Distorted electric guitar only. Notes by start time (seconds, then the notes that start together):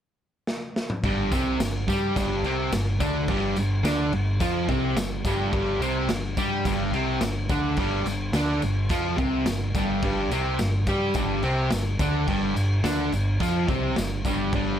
1.04 G2 G3
1.32 C3 C4
1.60 G2
1.88 G3 G4
2.17 G2 G3
2.45 C3 C4
2.72 G2
3.00 D3 D4
3.29 G2 G3
3.58 G2
3.83 D3 D4
4.13 G2
4.40 F3 F4
4.69 C3 C4
4.97 G2
5.26 G2 G3
5.52 G2 G3
5.80 C3 C4
6.10 G2
6.38 G3 G4
6.65 G2 G3
6.93 C3 C4
7.23 G2
7.50 D3 D4
7.78 G2 G3
8.07 G2
8.34 D3 D4
8.63 G2
8.90 F3 F4
9.18 C3 C4
9.47 G2
9.75 G2 G3
10.04 G2 G3
10.32 C3 C4
10.60 G2
10.88 G3 G4
11.15 G2 G3
11.42 C3 C4
11.71 G2
12.00 D3 D4
12.27 G2 G3
12.55 G2
12.83 D3 D4
13.13 G2
13.41 F3 F4
13.68 C3 C4
13.96 G2
14.26 G2 G3
14.54 G2 G3